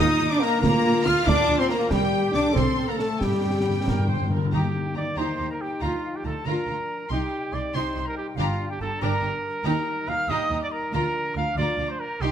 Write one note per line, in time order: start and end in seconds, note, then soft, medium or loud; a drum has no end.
0.00 0.30 D#4 loud
0.00 0.31 D#4 loud
0.00 0.63 D#4 loud
0.00 0.31 D#5 loud
0.00 0.29 D#6 medium
0.00 0.30 D#6 medium
0.00 0.32 D#6 loud
0.20 0.28 D#2 medium
0.29 0.41 D4 medium
0.29 0.41 D4 loud
0.29 0.37 D5 medium
0.29 0.41 D6 medium
0.29 0.34 D6 medium
0.29 0.44 D6 medium
0.40 0.62 A#3 loud
0.40 0.61 A#4 loud
0.40 0.60 A#5 loud
0.40 0.61 A#5 loud
0.40 snare medium
0.61 0.70 D2 loud
0.61 1.23 D3 loud
0.61 1.05 A#3 loud
0.61 1.88 F4 loud
0.61 1.04 A#4 loud
0.61 1.04 A#5 medium
0.61 1.08 A#5 loud
0.61 1.04 A#5 loud
0.61 concert bass drum medium
0.61 snare medium
1.05 1.14 D2 medium
1.05 1.27 F4 loud
1.05 1.26 F4 loud
1.05 1.27 F5 loud
1.05 1.13 F6 loud
1.05 1.26 F6 loud
1.05 snare medium
1.27 1.35 D2 loud
1.27 1.59 D4 loud
1.27 1.60 D5 loud
1.27 1.61 D6 loud
1.27 1.59 D6 loud
1.27 1.58 D6 loud
1.27 concert bass drum medium
1.27 snare medium
1.48 1.56 D2 medium
1.59 1.69 C4 medium
1.59 1.70 C4 loud
1.59 1.68 C5 medium
1.59 1.70 C6 medium
1.59 1.64 C6 medium
1.59 1.70 C6 medium
1.69 1.90 A#3 loud
1.69 1.91 A#3 loud
1.69 1.90 A#4 loud
1.69 1.91 A#5 medium
1.69 1.76 A#5 medium
1.69 snare medium
1.90 1.98 C2 medium
1.90 2.34 G3 medium
1.90 2.33 G3 medium
1.90 2.36 G4 medium
1.90 2.54 G4 medium
1.90 2.33 G5 medium
1.90 concert bass drum medium
1.90 snare medium
1.90 crash soft
2.32 2.42 C2 medium
2.32 2.54 D4 medium
2.32 2.55 D4 medium
2.32 2.59 D5 medium
2.32 2.42 D6 medium
2.32 2.55 D6 medium
2.32 2.41 D6 medium
2.32 snare medium
2.54 2.64 C2 medium
2.54 2.87 C4 medium
2.54 3.21 A4 medium
2.54 2.91 C5 medium
2.54 2.87 C6 medium
2.54 2.88 C6 medium
2.54 2.89 C6 medium
2.54 concert bass drum medium
2.54 snare medium
2.78 2.86 C2 soft
2.87 2.99 A#3 medium
2.87 3.00 A#3 medium
2.87 3.03 A#4 medium
2.87 2.92 A#5 medium
2.87 2.99 A#5 medium
2.99 3.20 A3 medium
2.99 3.21 A3 medium
2.99 3.25 A4 medium
2.99 3.20 A5 medium
2.99 3.21 A5 medium
2.99 3.22 A5 medium
2.99 snare medium
3.21 3.29 G2 medium
3.21 4.32 G3 medium
3.21 4.29 G3 medium
3.21 3.82 G4 medium
3.21 4.33 G4 medium
3.21 4.29 G5 medium
3.21 4.31 G5 medium
3.21 4.32 G5 medium
3.21 concert bass drum medium
3.21 snare medium
3.30 3.36 G2 soft
3.38 3.44 G2 soft
3.45 3.52 G2 soft
3.54 3.60 G2 soft
3.62 3.67 G2 soft
3.66 3.74 G2 medium
3.66 3.75 G2 soft
3.76 3.83 G2 medium
3.84 3.90 G2 medium
3.84 3.94 G2 medium
3.84 4.08 A#4 medium
3.84 concert bass drum medium
3.84 snare medium
3.91 3.98 G2 medium
4.00 4.05 G2 medium
4.06 4.13 G2 medium
4.06 4.17 G2 soft
4.06 4.31 C5 medium
4.14 4.21 G2 medium
4.22 4.29 G2 medium
4.30 4.36 G2 medium
4.30 4.53 A#4 medium
4.37 4.44 G2 medium
4.45 4.52 G2 loud
4.52 4.61 D#2 medium
4.52 4.60 D#3 medium
4.52 4.73 D#4 medium
4.52 6.43 D#4 medium
4.52 4.93 G4 medium
4.52 4.74 G4 medium
4.52 4.98 G5 medium
4.52 4.73 A#5 medium
4.56 5.80 A#3 soft
4.94 5.03 D#2 soft
4.94 5.04 D#3 soft
4.94 5.05 D#4 soft
4.94 5.04 G4 soft
4.94 5.19 D5 medium
4.94 5.02 A#5 soft
4.94 5.19 D6 medium
5.16 5.25 D#2 medium
5.16 5.26 D#3 medium
5.16 5.38 D#4 medium
5.16 5.38 G4 medium
5.16 5.50 C5 medium
5.16 5.36 A#5 medium
5.16 5.49 C6 medium
5.37 5.47 D#2 soft
5.37 5.47 D#3 soft
5.37 5.47 D#4 soft
5.37 5.47 G4 soft
5.37 5.45 A#5 soft
5.50 5.63 A#4 medium
5.50 5.55 A#5 medium
5.60 5.82 G4 medium
5.60 5.83 G5 medium
5.80 5.90 D2 medium
5.80 5.91 D3 medium
5.80 6.02 F4 medium
5.80 6.18 F4 medium
5.80 6.03 F4 medium
5.80 6.13 F5 medium
5.80 6.01 A#5 medium
5.85 7.10 F3 soft
6.13 6.26 G4 medium
6.13 6.26 G5 medium
6.24 6.33 D2 soft
6.24 6.33 D3 soft
6.24 6.34 F4 soft
6.24 6.35 F4 soft
6.24 6.46 A4 medium
6.24 6.47 A5 medium
6.24 6.32 A#5 soft
6.45 6.54 D2 medium
6.45 6.55 D3 medium
6.45 6.67 F4 medium
6.45 7.10 A#4 medium
6.45 6.66 A#5 medium
6.45 7.09 A#5 medium
6.49 7.12 D4 soft
6.67 6.75 D2 soft
6.67 6.76 D3 soft
6.67 6.76 F4 soft
6.67 6.75 A#5 soft
7.09 7.18 C2 medium
7.09 7.19 C3 medium
7.09 9.61 G3 medium
7.09 8.35 D#4 soft
7.09 7.31 D#4 medium
7.09 7.55 G4 medium
7.09 7.31 G4 medium
7.09 7.52 G5 medium
7.09 7.30 C6 medium
7.52 7.60 C2 soft
7.52 7.62 C3 soft
7.52 7.61 D#4 soft
7.52 7.62 G4 soft
7.52 7.77 D5 medium
7.52 7.60 C6 soft
7.52 7.58 D6 medium
7.73 7.82 C2 medium
7.73 7.82 C3 medium
7.73 7.93 D#4 medium
7.73 7.95 G4 medium
7.73 8.07 C5 medium
7.73 8.07 C6 medium
7.73 7.94 C6 medium
7.94 8.03 C2 soft
7.94 8.04 C3 soft
7.94 8.02 D#4 soft
7.94 8.04 G4 soft
7.94 8.04 C6 medium
8.05 8.17 A#4 medium
8.05 8.15 A#5 soft
8.14 8.27 G4 medium
8.14 8.37 G5 medium
8.36 8.45 G1 medium
8.36 8.46 G2 medium
8.36 8.98 G2 medium
8.36 8.58 D4 medium
8.36 8.70 F4 medium
8.36 8.59 G4 medium
8.36 8.68 F5 medium
8.36 8.59 A#5 medium
8.41 9.64 D4 medium
8.69 8.81 G4 medium
8.69 8.77 G5 medium
8.78 8.88 G1 soft
8.78 8.89 G2 soft
8.78 8.89 D4 soft
8.78 8.90 G4 soft
8.78 9.01 A4 medium
8.78 9.00 A5 medium
8.78 8.89 A#5 soft
8.99 9.10 G1 medium
8.99 9.10 G2 medium
8.99 9.22 D4 medium
8.99 9.21 G4 medium
8.99 9.64 A#4 medium
8.99 9.36 A#5 medium
8.99 9.21 A#5 medium
9.22 9.31 G1 soft
9.22 9.31 G2 soft
9.22 9.32 D4 soft
9.22 9.30 G4 soft
9.22 9.30 A#5 soft
9.63 9.72 D#2 medium
9.63 9.73 D#2 medium
9.63 10.91 G3 medium
9.63 9.85 D#4 medium
9.63 10.91 D#4 medium
9.63 9.85 G4 medium
9.63 10.10 A#4 medium
9.63 10.06 A#5 medium
9.63 9.84 A#5 medium
10.06 10.16 D#2 medium
10.06 10.17 D#4 medium
10.06 10.17 G4 soft
10.06 10.32 F5 medium
10.06 10.14 A#5 soft
10.06 10.30 F6 medium
10.28 10.36 D#2 medium
10.28 10.49 D#4 medium
10.28 10.49 G4 medium
10.28 10.62 D#5 medium
10.28 10.49 A#5 medium
10.28 10.61 D#6 medium
10.50 10.58 D#2 soft
10.50 10.59 D#2 soft
10.50 10.58 D#4 soft
10.50 10.60 G4 medium
10.50 10.60 A#5 soft
10.61 10.67 D5 medium
10.61 10.73 D6 medium
10.72 10.93 A#4 medium
10.72 10.92 A#5 medium
10.92 11.00 D2 medium
10.92 11.01 D2 medium
10.92 11.54 D3 soft
10.92 12.04 F3 medium
10.92 12.04 D4 medium
10.92 11.13 F4 medium
10.92 11.14 F4 medium
10.92 11.35 A#4 medium
10.92 11.36 A#5 medium
10.92 11.13 A#5 medium
11.34 11.44 D2 soft
11.34 11.45 D2 soft
11.34 11.44 F4 medium
11.34 11.45 F4 soft
11.34 11.57 F5 medium
11.34 11.45 A#5 soft
11.34 11.55 F6 medium
11.56 11.65 D2 medium
11.56 11.66 D2 medium
11.56 11.77 F4 medium
11.56 11.89 D5 medium
11.56 11.78 A#5 medium
11.56 11.90 D6 medium
11.77 11.85 D2 soft
11.77 11.88 D2 soft
11.77 11.88 F4 soft
11.77 11.88 A#5 medium
11.88 12.01 C5 medium
11.88 11.99 C6 medium
12.00 12.23 A#4 medium
12.00 12.23 A#5 medium
12.21 12.29 C2 medium
12.21 12.32 G3 medium
12.21 12.32 D#4 medium
12.21 12.32 G4 medium
12.21 12.32 G5 medium
12.21 12.32 C6 medium